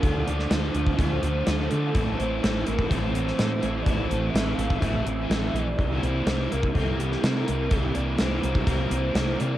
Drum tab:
HH |x-x-x-x-x-x-x-x-|x-x-x-x-x-x-x-x-|x-x-x-x-x-x-x-x-|x-x-x-x-x-x-x-x-|
SD |---oo-------o---|----o------oo---|----o-------o---|----o------oo---|
BD |o------oo-------|o------oo-------|o------oo-------|o------oo-------|

HH |x-x-x-x-x-x-x-x-|
SD |----o-------o---|
BD |o------oo-------|